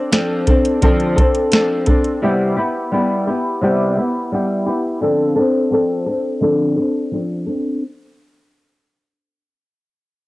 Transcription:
Already playing: C4 D4 A4
0.12 F3 C4 D4 A4, snare, closed hi-hat
0.47 C4 D4 A4, kick, closed hi-hat
0.65 closed hi-hat
0.82 D3 F3 C4 D4 A4, kick, closed hi-hat
1.00 closed hi-hat
1.16 C4 D4 A4, kick, closed hi-hat
1.35 closed hi-hat
1.52 F3 C4 D4 A4, snare, closed hi-hat
1.86 C4 D4 A4, kick, closed hi-hat
2.04 closed hi-hat
2.22 C3 G3 B3 E4 G4
2.56 B3 E4 G4
2.92 G3 B3 E4 G4
3.27 B3 E4 G4
3.61 C3 G3 B3 E4 G4
3.97 B3 E4 G4
4.32 G3 B3 E4 G4
4.66 B3 E4 G4
5.01 D3 F3 C4 D4 A4
5.36 C4 D4 A4
5.70 F3 C4 D4 A4
6.06 C4 D4 A4
6.41 D3 F3 C4 D4 A4
6.76 C4 D4 A4
7.11 F3 C4 D4 A4
7.46 C4 D4 A4

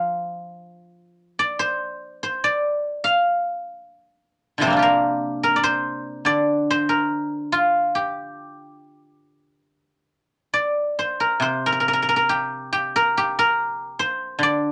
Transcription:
Already playing: F3 C5 D5 F5
1.39 D5
1.59 C5
2.23 C5
2.44 D5
3.04 F5
4.58 C3 D3 F3
4.62 G3 C5
4.67 A#3 C4
4.73 D4 F4
4.79 G4 A#4
5.43 A#4
5.56 D5
5.63 C5
6.25 D3 D5
6.70 C5
6.89 A#4
7.52 F4
7.95 G4
10.54 D5
10.99 C5
11.20 A#4
11.40 C3 C5
11.66 A#4
11.72 A#4
11.80 A#4
11.88 A#4
11.93 A#4
12.02 A#4
12.09 A#4
12.16 A#4
12.29 G4
12.73 G4
12.96 A#4
13.17 G4
13.39 A#4
13.99 C5
14.39 D3
14.43 D5

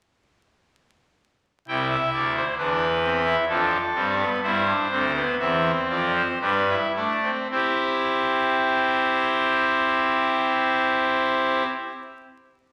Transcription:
1.68 C2 C3 E4 G5
1.90 E5
2.13 D2 D3 D5
2.35 C5
2.57 E2 E3 D4 B4
3.03 C4
3.25 E4
3.49 F2 F3 D4 A4
3.94 G2 G3 C4
4.20 B3
4.43 G2 G3 E4 C5
4.67 D4
4.91 D2 D3 C4
5.15 B3
5.39 E2 E3 C4 E5
5.89 F2 F3 D5
6.15 C5
6.41 G2 G3 D4 B4
6.68 E4
6.95 A3 D4 D5
7.23 C4
7.51 C4 E4 G4 C5

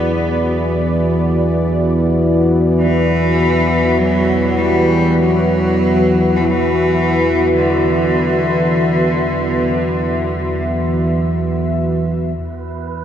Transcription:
Already playing: E2 E3 B3 F#4 B4 D5
2.79 E3
3.98 F#3
4.58 G3
5.17 F#3
5.63 E5
6.36 E3
6.45 F#3
6.50 E3
7.55 D3
12.37 E2 E3 E4 B4, taiko

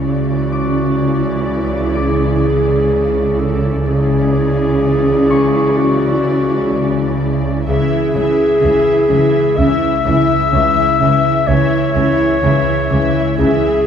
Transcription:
0.05 C#2 C#3 E3 E4 F#4 D5
0.52 C#4 D6
1.01 C#3
1.48 C#3
1.95 C#4 G#4 D6
2.44 C#3
2.91 C#3
3.39 C#3 A4
3.86 C#2 C#3 E3 E4 G#4 D5
4.34 C#4
4.82 C#3
5.30 C#3 C#6
5.77 C#4 F#4
6.25 C#3
6.72 C#3
7.20 C#3
7.67 C#2 C#3 E3 E4 G#4 E5
8.14 C#2 C#3 E3 C#4 E4 E5
8.62 C#2 C#3 E3 E4 E5
9.09 C#2 C#3 E3 E4 E5
9.57 C#2 C#3 E3 C#4 E4 E5
10.05 C#2 C#3 E3 E4 E5
10.52 C#2 C#3 E3 E4 E5
10.99 C#2 C#3 E3 E4 E5
11.47 C#2 C#3 E3 E4 C#5 E5
11.95 C#2 C#3 E3 C#4 E4 E5
12.43 C#2 C#3 E3 E4 E5
12.90 C#2 C#3 E3 E4 E5
13.38 C#2 C#3 E3 C#4 E4 G#4 E5

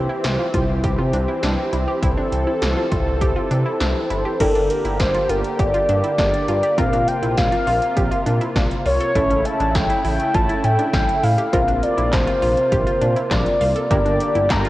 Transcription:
Already playing: E3 C4 E4 G4 C5
0.10 E4
0.24 C2, snare, closed hi-hat
0.39 F4
0.54 C2 F4, kick, closed hi-hat
0.69 C2
0.84 C2 G4, kick, closed hi-hat
0.99 C3 F4
1.13 C2 D4, closed hi-hat
1.28 E4
1.43 C2 D4, snare, closed hi-hat
1.73 C2 E4, closed hi-hat
1.88 G4
2.02 C2 E4 A4, kick, closed hi-hat
2.17 D4
2.32 C2, closed hi-hat
2.47 E4
2.62 C2, snare, closed hi-hat
2.77 F4
2.92 C2 F4, kick, closed hi-hat
3.06 C2
3.21 C2 G4, kick, closed hi-hat
3.36 F4
3.51 C3 D4, closed hi-hat
3.66 E4
3.81 C2 D4, snare, closed hi-hat
4.10 G1 E4 C5, closed hi-hat
4.25 G4
4.40 G1 D3 A#3 D4 E4 G4 A4 A#4, kick, closed hi-hat, crash
4.55 G1 D4, closed hi-hat
4.70 A#4, closed hi-hat
4.85 G1 E4, closed hi-hat
5.00 G1 C5, kick, snare, closed hi-hat
5.14 F4, closed hi-hat
5.29 G1 F4 A#4, closed hi-hat
5.44 closed hi-hat
5.59 G1 G4 D5, kick, closed hi-hat
5.74 F4, closed hi-hat
5.89 G2 D4, closed hi-hat
6.04 E4, closed hi-hat
6.18 G1 D4 D5, kick, snare, closed hi-hat
6.34 closed hi-hat
6.48 G2 F4 D5, closed hi-hat
6.63 G4, closed hi-hat
6.78 A#1 C3 C4 F4 A#4 F5, kick, closed hi-hat
6.93 A#1 D4, closed hi-hat
7.08 G5, closed hi-hat
7.22 A#1 E4, closed hi-hat
7.37 A#1 F5, kick, snare, closed hi-hat
7.52 F4, closed hi-hat
7.67 A#1 F4, open hi-hat
7.82 closed hi-hat
7.97 A#1 G4, kick, closed hi-hat
8.11 F4, closed hi-hat
8.26 A#2 D4, closed hi-hat
8.41 E4, closed hi-hat
8.56 A#1 D4, kick, snare, closed hi-hat
8.71 closed hi-hat
8.86 C2 F4 C#5, open hi-hat
9.01 A4, closed hi-hat
9.15 A1 C#3 A3 C#4 E4 A4, kick, closed hi-hat
9.30 A1 C#4, closed hi-hat
9.45 A5, closed hi-hat
9.60 A1 D4, closed hi-hat
9.75 A1 G5, kick, snare, closed hi-hat
9.90 E4, closed hi-hat
10.05 A1 E4 G5, open hi-hat
10.20 closed hi-hat
10.34 A1 F4 A5, kick, closed hi-hat
10.49 E4, closed hi-hat
10.64 A2 C#4 G5, closed hi-hat
10.79 D4, closed hi-hat
10.93 A1 C#4, kick, snare, closed hi-hat
11.09 closed hi-hat
11.23 A2 E4 F5, open hi-hat
11.38 G4, closed hi-hat
11.53 A#1 C3 A#3 C4 F4 A#4, kick, closed hi-hat
11.68 A#1 D4, closed hi-hat
11.83 D5, closed hi-hat
11.97 A#1 E4, closed hi-hat
12.12 A#1 C5, kick, snare, clap, closed hi-hat
12.27 F4, closed hi-hat
12.42 A#1 F4, open hi-hat
12.57 closed hi-hat
12.72 A#1 G4, kick, closed hi-hat
12.87 F4, closed hi-hat
13.02 A#2 D4, closed hi-hat
13.16 E4, closed hi-hat
13.31 A#1 D4 D5, kick, snare, clap, closed hi-hat
13.46 closed hi-hat
13.61 C2 F4, open hi-hat
13.76 A4, closed hi-hat
13.91 G1 D3 D4 E4 G4 A#4 D5, kick, closed hi-hat
14.06 G1 D4, closed hi-hat
14.20 closed hi-hat
14.35 G1 E4, closed hi-hat
14.50 G1 A#5, kick, snare, clap, closed hi-hat
14.65 F4, closed hi-hat

